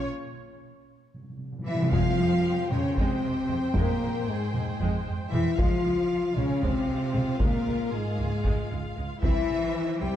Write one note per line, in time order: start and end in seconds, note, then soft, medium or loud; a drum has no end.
1.14 1.21 C3 soft
1.22 1.28 C3 soft
1.30 1.36 C3 soft
1.37 1.43 C3 soft
1.44 1.51 C3 soft
1.52 1.58 C3 medium
1.59 1.66 C3 medium
1.66 1.73 C3 medium
1.66 1.91 E3 medium
1.66 1.91 E4 medium
1.66 1.91 E5 medium
1.75 1.81 C3 medium
1.82 1.89 C3 medium
1.91 2.67 F2 medium
1.91 2.01 F2 medium
1.91 2.71 F3 medium
1.91 2.16 G#3 medium
1.91 2.69 F4 medium
1.91 5.53 C5 medium
1.91 2.68 F5 medium
1.91 5.54 G5 medium
1.91 taiko medium
2.19 2.27 F2 soft
2.19 2.27 G#3 soft
2.70 2.79 F2 soft
2.70 2.97 C#3 medium
2.70 2.79 G#3 soft
2.70 2.97 C#4 medium
2.70 2.96 C#5 medium
2.70 taiko mid soft
2.96 3.05 F2 medium
2.96 3.75 C3 medium
2.96 3.21 G#3 medium
2.96 3.75 C4 medium
2.96 3.75 C5 medium
2.96 taiko medium
3.24 3.32 F2 soft
3.24 3.32 G#3 soft
3.49 3.57 F2 soft
3.49 3.58 G#3 medium
3.49 taiko mid medium
3.74 3.82 F2 medium
3.74 4.26 A#2 medium
3.74 4.00 G#3 medium
3.74 4.28 A#3 medium
3.74 4.26 A#4 medium
3.74 taiko medium
4.02 4.10 F2 soft
4.02 4.10 G#3 soft
4.27 5.05 G#2 medium
4.27 5.06 G#3 medium
4.27 5.06 G#4 medium
4.53 4.61 F2 soft
4.53 4.62 G#3 soft
4.53 taiko mid soft
4.80 4.89 F2 medium
4.80 5.04 G#3 medium
4.80 taiko medium
5.06 5.14 F2 soft
5.06 5.14 G#3 soft
5.32 5.41 F2 soft
5.32 5.56 E3 medium
5.32 5.40 G#3 medium
5.32 5.57 E4 medium
5.32 5.56 E5 medium
5.32 taiko mid soft
5.57 5.67 C#2 medium
5.57 6.34 F3 medium
5.57 5.82 G#3 medium
5.57 6.36 F4 medium
5.57 9.23 F4 medium
5.57 9.19 F5 medium
5.57 6.36 F5 medium
5.57 taiko medium
5.85 5.93 C#2 medium
5.85 5.93 G#3 soft
6.35 6.45 C#2 soft
6.35 6.62 C#3 medium
6.35 6.44 G#3 medium
6.35 6.62 C#4 medium
6.35 6.63 C#5 medium
6.35 taiko mid soft
6.61 6.71 C#2 medium
6.61 7.40 C3 medium
6.61 6.86 G#3 medium
6.61 7.40 C4 medium
6.61 7.39 C5 medium
6.61 taiko medium
6.88 6.97 C#2 soft
6.88 6.96 G#3 soft
7.13 7.23 C#2 soft
7.13 7.21 G#3 medium
7.13 taiko mid medium
7.39 7.49 C#2 medium
7.39 7.91 A#2 medium
7.39 7.64 G#3 medium
7.39 7.92 A#3 medium
7.39 7.92 A#4 medium
7.39 taiko medium
7.66 7.74 C#2 medium
7.66 7.74 G#3 soft
7.91 8.71 G#2 medium
7.91 8.70 G#3 medium
7.91 8.70 G#4 medium
8.18 8.27 C#2 soft
8.18 8.26 G#3 medium
8.43 8.53 C#2 medium
8.43 8.68 G#3 medium
8.43 taiko medium
8.70 8.79 C#2 soft
8.70 8.78 G#3 soft
8.96 9.06 C#2 medium
8.96 9.04 G#3 medium
9.21 9.31 C2 medium
9.21 9.98 E3 medium
9.21 9.47 C4 medium
9.21 10.16 E4 medium
9.21 9.97 E4 medium
9.21 10.16 C5 medium
9.21 9.96 E5 medium
9.21 taiko medium
9.48 9.57 C2 medium
9.48 9.56 C4 soft
10.01 10.09 C2 soft
10.01 10.16 G3 medium
10.01 10.09 C4 soft
10.01 10.16 G4 medium
10.01 10.16 G5 medium